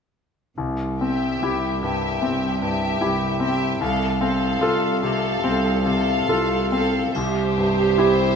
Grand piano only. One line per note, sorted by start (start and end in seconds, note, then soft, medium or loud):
0.58 2.18 C2 soft
1.01 1.67 C4 soft
1.43 1.79 E4 soft
1.43 1.79 G4 soft
1.83 2.46 G2 soft
2.22 2.85 C4 soft
2.62 3.25 G2 soft
3.01 3.37 E4 soft
3.01 3.37 G4 soft
3.40 3.80 C4 soft
3.81 5.39 C2 soft
4.21 4.86 C4 soft
4.61 4.98 F4 soft
4.61 4.99 A4 soft
5.03 5.69 C3 soft
5.44 6.10 C4 soft
5.85 6.54 C3 soft
6.29 6.68 F4 soft
6.29 6.69 A4 soft
6.72 7.16 C4 soft
7.16 8.36 C2 soft
7.57 8.24 G2 soft
7.98 8.36 E4 soft
7.98 8.36 G4 soft